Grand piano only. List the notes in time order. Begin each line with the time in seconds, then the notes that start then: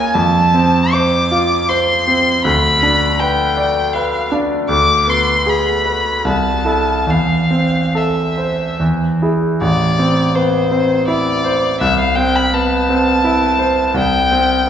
Already playing: C#2 A#3 A#4 C#5
0.15 F2
0.54 C4
0.93 C5
1.31 F4
1.69 C5
2.07 C4
2.44 D2
2.83 D4
3.20 B4
3.57 D5
3.95 B4
4.32 D4
4.69 D2
5.07 B3
5.46 G#4
5.86 B4
6.25 C2
6.65 E4 A4
7.07 E2
7.50 C4
7.95 A4
8.38 C5
8.80 E2
9.22 E4 G#4
9.61 A1
9.99 C4
10.35 B3
10.71 C4
11.08 E4
11.44 C5
11.81 C2
12.16 C4
12.54 B3
12.89 C4
13.24 E4
13.59 C5
13.94 C2
14.31 C4